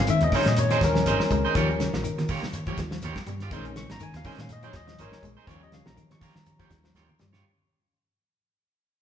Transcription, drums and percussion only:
0.07 closed hi-hat medium
0.07 high conga soft
0.07 claves medium
0.07 shekere medium
0.21 closed hi-hat soft
0.21 high conga loud
0.21 shekere soft
0.32 kick medium
0.32 snare soft
0.32 open hi-hat medium
0.32 low conga medium
0.32 claves medium
0.32 shekere medium
0.46 snare medium
0.46 closed hi-hat soft
0.46 high conga medium
0.56 closed hi-hat medium
0.56 high conga soft
0.56 shekere loud
0.70 snare soft
0.70 closed hi-hat soft
0.70 claves medium
0.70 shekere soft
0.81 kick medium
0.81 snare medium
0.81 closed hi-hat medium
0.81 high conga loud
0.81 shekere medium
0.95 snare medium
0.95 closed hi-hat soft
0.95 shekere soft
1.06 closed hi-hat medium
1.06 high conga medium
1.06 shekere medium
1.20 snare medium
1.20 claves medium
1.20 shekere soft
1.31 kick medium
1.31 closed hi-hat soft
1.31 low conga medium
1.31 shekere medium
1.45 shekere soft
1.55 kick loud
1.55 closed hi-hat medium
1.55 high conga soft
1.55 claves medium
1.55 shekere medium
1.70 shekere soft
1.80 snare medium
1.80 closed hi-hat medium
1.80 shekere medium
1.94 snare medium
1.94 high conga loud
1.94 shekere soft
2.04 closed hi-hat medium
2.04 high conga soft
2.04 claves medium
2.04 shekere loud
2.18 snare soft
2.18 closed hi-hat soft
2.18 high conga medium
2.18 shekere soft
2.28 kick medium
2.28 open hi-hat medium
2.28 low conga medium
2.28 claves medium
2.28 shekere medium
2.42 snare medium
2.42 high conga medium
2.42 shekere soft
2.53 closed hi-hat medium
2.53 high conga soft
2.53 shekere loud
2.67 kick medium
2.67 closed hi-hat soft
2.67 claves medium
2.67 shekere soft
2.77 kick medium
2.77 snare medium
2.77 closed hi-hat medium
2.77 high conga loud
2.77 shekere medium
2.91 snare medium
2.91 shekere soft
3.02 snare soft
3.02 closed hi-hat medium
3.02 high conga medium
3.02 shekere loud
3.16 kick medium
3.16 snare medium
3.16 claves medium
3.16 shekere soft
3.27 closed hi-hat medium
3.27 low conga medium
3.27 shekere medium
3.40 snare soft
3.40 closed hi-hat soft
3.40 shekere soft
3.51 kick loud
3.51 closed hi-hat medium
3.51 claves medium
3.51 shekere medium
3.65 closed hi-hat soft
3.65 shekere soft
3.76 snare medium
3.76 closed hi-hat medium
3.76 shekere medium
3.90 snare medium
3.90 closed hi-hat soft
3.90 high conga medium
3.90 shekere soft
3.99 closed hi-hat medium
3.99 high conga soft
3.99 claves medium
3.99 shekere loud
4.13 snare soft
4.13 closed hi-hat soft
4.13 high conga medium
4.13 shekere soft
4.24 kick medium
4.24 open hi-hat medium
4.24 low conga medium
4.24 claves medium
4.24 shekere medium
4.38 snare medium
4.38 closed hi-hat soft
4.38 high conga medium
4.38 shekere soft
4.49 closed hi-hat medium
4.49 high conga soft
4.49 shekere loud
4.63 closed hi-hat soft
4.63 claves medium
4.63 shekere soft
4.73 kick medium
4.73 snare medium
4.73 closed hi-hat medium
4.73 high conga loud
4.73 shekere medium
4.88 snare medium
4.88 closed hi-hat soft
4.88 shekere soft
4.99 closed hi-hat medium
4.99 high conga medium
4.99 shekere loud
5.12 snare medium
5.12 high conga medium
5.12 claves medium
5.12 shekere soft
5.23 kick medium
5.23 closed hi-hat medium
5.23 low conga medium
5.23 shekere medium
5.40 shekere soft
5.47 kick loud
5.47 snare soft
5.47 closed hi-hat medium
5.47 high conga soft
5.47 claves medium
5.47 shekere medium
5.63 shekere soft
5.72 snare medium
5.72 closed hi-hat medium
5.72 shekere medium
5.86 snare medium
5.86 high conga loud
5.97 closed hi-hat medium
5.97 claves medium
5.97 shekere medium
6.10 snare soft
6.10 closed hi-hat soft
6.10 high conga medium
6.10 shekere soft
6.21 kick medium
6.21 snare soft
6.21 open hi-hat medium
6.21 low conga medium
6.21 claves medium
6.21 shekere medium
6.36 snare medium
6.36 shekere soft
6.46 closed hi-hat medium
6.46 high conga soft
6.46 shekere loud
6.60 kick medium
6.60 snare soft
6.60 closed hi-hat soft
6.60 claves medium
6.60 shekere soft
6.70 kick medium
6.70 snare medium
6.70 closed hi-hat medium
6.70 high conga loud
6.70 shekere medium
6.84 snare medium
6.84 shekere soft
6.95 snare medium
6.95 high conga medium
6.95 shekere loud
7.08 high conga medium
7.08 claves medium
7.08 shekere soft
7.19 snare medium
7.19 high conga medium
7.19 shekere medium
7.33 snare medium
7.33 low conga medium
7.33 shekere soft

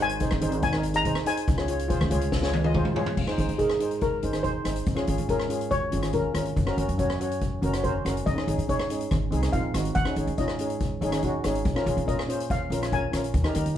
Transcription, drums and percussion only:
0.09 closed hi-hat medium
0.20 kick loud
0.20 closed hi-hat medium
0.31 cross-stick medium
0.41 closed hi-hat medium
0.52 closed hi-hat medium
0.62 kick loud
0.62 closed hi-hat medium
0.73 cross-stick medium
0.83 closed hi-hat medium
0.94 closed hi-hat medium
1.05 kick medium
1.05 closed hi-hat medium
1.15 cross-stick medium
1.26 closed hi-hat medium
1.37 closed hi-hat medium
1.48 kick loud
1.48 closed hi-hat medium
1.58 cross-stick medium
1.68 closed hi-hat medium
1.79 closed hi-hat medium
1.90 kick loud
1.90 closed hi-hat medium
2.01 cross-stick medium
2.11 closed hi-hat loud
2.21 closed hi-hat medium
2.32 kick loud
2.32 snare medium
2.43 snare medium
2.54 high tom medium
2.64 high tom medium
2.74 kick medium
2.74 mid tom medium
2.85 mid tom medium
2.96 floor tom loud
3.06 floor tom loud
3.17 kick loud
3.17 crash medium
3.27 cross-stick medium
3.38 closed hi-hat medium
3.49 closed hi-hat medium
3.59 kick medium
3.59 closed hi-hat medium
3.70 cross-stick medium
3.80 closed hi-hat medium
3.91 closed hi-hat medium
4.01 kick loud
4.01 closed hi-hat medium
4.23 closed hi-hat medium
4.33 cross-stick medium
4.33 closed hi-hat medium
4.44 kick medium
4.44 closed hi-hat medium
4.65 cross-stick medium
4.65 closed hi-hat medium
4.76 closed hi-hat medium
4.86 kick loud
4.86 closed hi-hat medium
4.97 cross-stick medium
5.07 closed hi-hat medium
5.18 closed hi-hat medium
5.29 kick medium
5.29 closed hi-hat medium
5.40 cross-stick medium
5.50 closed hi-hat medium
5.61 closed hi-hat medium
5.71 kick medium
5.71 closed hi-hat medium
5.92 closed hi-hat medium
6.03 cross-stick medium
6.03 closed hi-hat medium
6.13 kick medium
6.13 closed hi-hat medium
6.35 cross-stick medium
6.35 closed hi-hat medium
6.45 closed hi-hat medium
6.57 kick loud
6.57 closed hi-hat medium
6.67 cross-stick medium
6.78 closed hi-hat medium
6.89 closed hi-hat medium
6.99 kick medium
6.99 closed hi-hat medium
7.10 cross-stick medium
7.21 closed hi-hat medium
7.31 closed hi-hat medium
7.41 kick loud
7.41 closed hi-hat medium
7.63 closed hi-hat medium
7.74 cross-stick medium
7.74 closed hi-hat medium
7.84 kick medium
7.84 closed hi-hat medium
8.06 cross-stick medium
8.06 closed hi-hat medium
8.17 closed hi-hat medium
8.27 kick loud
8.27 closed hi-hat medium
8.38 cross-stick medium
8.48 closed hi-hat medium
8.59 closed hi-hat medium
8.69 kick medium
8.69 closed hi-hat medium
8.79 cross-stick medium
8.90 closed hi-hat medium
9.01 closed hi-hat medium
9.11 kick loud
9.11 cross-stick medium
9.11 closed hi-hat medium
9.32 closed hi-hat medium
9.43 cross-stick medium
9.43 closed hi-hat medium
9.53 kick medium
9.53 closed hi-hat medium
9.74 cross-stick medium
9.74 closed hi-hat medium
9.85 closed hi-hat medium
9.95 kick loud
9.95 closed hi-hat medium
10.05 cross-stick medium
10.16 closed hi-hat medium
10.27 closed hi-hat medium
10.38 kick medium
10.38 closed hi-hat medium
10.48 cross-stick medium
10.59 closed hi-hat medium
10.70 closed hi-hat medium
10.80 kick loud
10.80 closed hi-hat medium
11.02 closed hi-hat medium
11.12 cross-stick medium
11.12 closed hi-hat medium
11.23 kick medium
11.23 closed hi-hat medium
11.44 cross-stick medium
11.44 closed hi-hat medium
11.55 closed hi-hat medium
11.65 kick loud
11.65 closed hi-hat medium
11.76 cross-stick medium
11.87 closed hi-hat medium
11.98 closed hi-hat medium
12.08 kick medium
12.08 closed hi-hat medium
12.19 cross-stick medium
12.30 closed hi-hat medium
12.40 closed hi-hat medium
12.50 kick loud
12.50 closed hi-hat medium
12.72 closed hi-hat medium
12.83 cross-stick medium
12.83 closed hi-hat medium
12.92 kick medium
12.92 closed hi-hat medium
13.13 cross-stick medium
13.13 closed hi-hat medium
13.24 closed hi-hat medium
13.34 kick loud
13.34 closed hi-hat medium
13.44 cross-stick medium
13.55 closed hi-hat medium
13.66 closed hi-hat medium

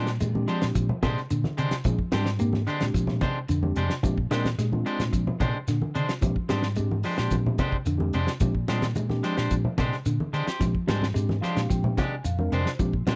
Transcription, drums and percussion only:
0.07 snare medium
0.07 closed hi-hat soft
0.20 closed hi-hat medium
0.20 high conga medium
0.20 shekere medium
0.35 high conga medium
0.48 closed hi-hat soft
0.48 shekere soft
0.62 snare medium
0.62 closed hi-hat soft
0.75 kick medium
0.75 closed hi-hat medium
0.75 shekere medium
0.89 low conga medium
1.03 kick medium
1.03 snare soft
1.03 closed hi-hat soft
1.03 high conga medium
1.03 shekere soft
1.17 snare soft
1.30 closed hi-hat medium
1.30 shekere medium
1.44 snare soft
1.44 high conga medium
1.58 closed hi-hat medium
1.58 shekere soft
1.71 snare medium
1.71 closed hi-hat medium
1.84 kick medium
1.84 closed hi-hat medium
1.84 low conga medium
1.84 shekere medium
1.99 kick medium
2.12 snare medium
2.12 closed hi-hat soft
2.12 high conga medium
2.12 shekere soft
2.26 snare medium
2.39 closed hi-hat medium
2.39 shekere medium
2.53 snare soft
2.53 high conga medium
2.67 closed hi-hat soft
2.67 shekere soft
2.81 snare medium
2.81 closed hi-hat soft
2.94 kick medium
2.94 closed hi-hat medium
2.94 shekere medium
3.07 snare soft
3.07 low conga medium
3.21 kick medium
3.21 closed hi-hat soft
3.21 high conga medium
3.21 shekere soft
3.48 closed hi-hat medium
3.48 shekere medium
3.63 high conga medium
3.76 closed hi-hat soft
3.76 shekere soft
3.90 snare medium
4.03 kick medium
4.03 closed hi-hat medium
4.03 low conga medium
4.03 shekere medium
4.18 kick medium
4.31 snare medium
4.31 closed hi-hat medium
4.31 high conga medium
4.31 shekere soft
4.45 snare medium
4.45 closed hi-hat soft
4.45 high conga medium
4.59 snare soft
4.59 closed hi-hat medium
4.59 shekere medium
4.73 high conga medium
4.86 closed hi-hat soft
4.86 shekere soft
5.00 snare medium
5.00 closed hi-hat medium
5.00 low conga medium
5.13 kick medium
5.13 closed hi-hat medium
5.13 shekere medium
5.27 low conga medium
5.40 kick medium
5.40 closed hi-hat medium
5.40 high conga medium
5.40 shekere soft
5.68 snare soft
5.68 closed hi-hat medium
5.68 shekere medium
5.82 high conga medium
5.95 closed hi-hat medium
5.95 shekere soft
6.09 snare medium
6.09 closed hi-hat soft
6.22 kick medium
6.22 closed hi-hat medium
6.22 low conga medium
6.22 shekere medium
6.36 kick medium
6.49 snare medium
6.49 closed hi-hat medium
6.49 high conga medium
6.49 shekere soft
6.62 snare medium
6.76 closed hi-hat medium
6.76 shekere medium
6.91 high conga medium
7.03 open hi-hat medium
7.03 shekere soft
7.18 snare medium
7.18 closed hi-hat soft
7.30 kick medium
7.30 closed hi-hat medium
7.30 high conga medium
7.30 shekere medium
7.46 low conga medium
7.58 kick medium
7.58 closed hi-hat soft
7.58 high conga medium
7.58 shekere soft
7.72 kick medium
7.86 closed hi-hat medium
7.86 shekere medium
8.00 high conga medium
8.13 closed hi-hat medium
8.13 shekere soft
8.27 snare medium
8.40 kick medium
8.40 closed hi-hat medium
8.40 low conga medium
8.40 shekere medium
8.55 kick medium
8.68 snare medium
8.68 closed hi-hat medium
8.68 high conga medium
8.68 shekere soft
8.82 snare medium
8.82 closed hi-hat soft
8.82 high conga medium
8.95 closed hi-hat medium
8.95 high conga medium
8.95 shekere medium
9.10 snare soft
9.10 high conga medium
9.24 snare soft
9.24 closed hi-hat medium
9.24 shekere soft
9.37 snare medium
9.37 closed hi-hat soft
9.51 kick medium
9.51 closed hi-hat medium
9.51 shekere medium
9.65 low conga medium
9.78 kick medium
9.78 snare soft
9.78 closed hi-hat medium
9.78 high conga medium
9.78 shekere soft
9.92 snare soft
10.06 closed hi-hat medium
10.06 shekere medium
10.20 high conga medium
10.34 closed hi-hat medium
10.34 shekere soft
10.47 snare medium
10.47 closed hi-hat soft
10.61 kick medium
10.61 snare soft
10.61 closed hi-hat medium
10.61 low conga medium
10.61 shekere medium
10.75 kick medium
10.88 snare medium
10.88 closed hi-hat medium
10.88 high conga medium
10.88 shekere soft
11.02 snare medium
11.02 high conga medium
11.16 closed hi-hat medium
11.16 shekere medium
11.29 snare soft
11.29 high conga medium
11.44 snare soft
11.44 closed hi-hat medium
11.44 shekere soft
11.57 snare medium
11.57 closed hi-hat medium
11.70 kick medium
11.70 closed hi-hat medium
11.70 shekere medium
11.84 low conga medium
11.97 kick medium
11.97 snare soft
11.97 closed hi-hat soft
11.97 high conga medium
11.97 shekere soft
12.25 closed hi-hat medium
12.25 shekere medium
12.39 high conga medium
12.52 closed hi-hat medium
12.52 shekere soft
12.66 snare medium
12.79 kick medium
12.79 closed hi-hat medium
12.79 low conga medium
12.79 shekere medium
12.93 kick medium
13.07 snare medium
13.07 closed hi-hat soft
13.07 high conga medium
13.07 shekere soft

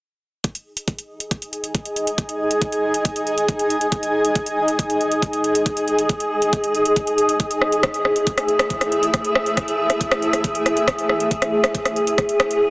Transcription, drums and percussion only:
0.44 kick loud
0.44 closed hi-hat medium
0.55 closed hi-hat medium
0.77 closed hi-hat medium
0.88 kick loud
0.88 closed hi-hat medium
0.99 closed hi-hat medium
1.20 closed hi-hat medium
1.31 kick loud
1.31 closed hi-hat medium
1.42 closed hi-hat medium
1.53 closed hi-hat soft
1.64 closed hi-hat medium
1.75 kick loud
1.75 closed hi-hat medium
1.85 closed hi-hat medium
1.96 closed hi-hat medium
2.07 closed hi-hat medium
2.18 kick loud
2.18 closed hi-hat medium
2.29 closed hi-hat medium
2.51 closed hi-hat medium
2.62 kick loud
2.62 closed hi-hat medium
2.72 closed hi-hat medium
2.94 closed hi-hat medium
3.05 kick loud
3.05 closed hi-hat medium
3.16 closed hi-hat medium
3.27 closed hi-hat soft
3.38 closed hi-hat medium
3.48 kick loud
3.48 closed hi-hat medium
3.59 closed hi-hat soft
3.70 closed hi-hat soft
3.81 closed hi-hat medium
3.92 kick loud
3.92 closed hi-hat medium
4.03 closed hi-hat medium
4.25 closed hi-hat soft
4.35 kick loud
4.35 closed hi-hat medium
4.46 closed hi-hat medium
4.68 closed hi-hat soft
4.79 kick loud
4.79 closed hi-hat medium
4.90 closed hi-hat soft
5.01 closed hi-hat soft
5.12 closed hi-hat medium
5.22 kick loud
5.22 closed hi-hat medium
5.33 closed hi-hat soft
5.44 closed hi-hat medium
5.55 closed hi-hat medium
5.66 kick loud
5.66 closed hi-hat medium
5.77 closed hi-hat soft
5.88 closed hi-hat soft
5.99 closed hi-hat soft
6.09 kick loud
6.09 closed hi-hat medium
6.20 closed hi-hat soft
6.42 closed hi-hat soft
6.53 kick loud
6.53 closed hi-hat medium
6.64 closed hi-hat soft
6.75 closed hi-hat soft
6.85 closed hi-hat medium
6.96 kick loud
6.96 closed hi-hat medium
7.07 closed hi-hat soft
7.18 closed hi-hat soft
7.29 closed hi-hat medium
7.40 kick loud
7.40 closed hi-hat medium
7.51 closed hi-hat soft
7.62 cross-stick soft
7.72 closed hi-hat soft
7.83 kick loud
7.83 cross-stick medium
7.83 closed hi-hat medium
7.94 closed hi-hat soft
8.05 cross-stick soft
8.16 closed hi-hat soft
8.27 kick loud
8.27 closed hi-hat medium
8.38 cross-stick soft
8.38 closed hi-hat soft
8.48 closed hi-hat soft
8.59 cross-stick medium
8.59 closed hi-hat soft
8.70 kick loud
8.70 closed hi-hat medium
8.81 cross-stick soft
8.81 closed hi-hat soft
8.92 closed hi-hat soft
9.03 closed hi-hat medium
9.14 kick loud
9.14 cross-stick soft
9.14 closed hi-hat medium
9.25 closed hi-hat medium
9.35 cross-stick medium
9.46 closed hi-hat soft
9.57 kick loud
9.57 cross-stick soft
9.57 closed hi-hat medium
9.68 closed hi-hat medium
9.90 cross-stick soft
9.90 closed hi-hat medium
10.01 kick loud
10.01 closed hi-hat medium
10.12 cross-stick medium
10.12 closed hi-hat soft
10.22 closed hi-hat soft
10.33 cross-stick soft
10.33 closed hi-hat medium
10.44 kick loud
10.44 closed hi-hat medium
10.55 closed hi-hat medium
10.66 cross-stick soft
10.66 closed hi-hat medium
10.77 closed hi-hat medium
10.88 kick loud
10.88 cross-stick medium
10.88 closed hi-hat medium
10.99 closed hi-hat medium
11.09 cross-stick soft
11.20 closed hi-hat medium
11.31 kick loud
11.31 closed hi-hat medium
11.42 cross-stick soft
11.42 closed hi-hat medium
11.64 cross-stick medium
11.64 closed hi-hat medium
11.75 kick loud
11.75 closed hi-hat medium
11.85 cross-stick soft
11.85 closed hi-hat medium
11.96 closed hi-hat soft
12.07 closed hi-hat medium
12.18 kick loud
12.18 cross-stick soft
12.18 closed hi-hat medium
12.29 closed hi-hat medium
12.40 cross-stick medium
12.40 closed hi-hat medium
12.51 closed hi-hat medium

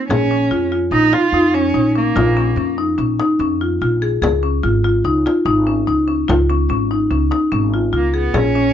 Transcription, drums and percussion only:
0.10 frame drum medium
1.13 frame drum soft
1.75 frame drum soft
2.16 frame drum medium
3.20 frame drum soft
3.82 frame drum soft
4.23 frame drum medium
5.27 frame drum soft
5.89 frame drum soft
6.29 frame drum medium
6.50 frame drum soft
7.32 frame drum soft
8.34 frame drum medium

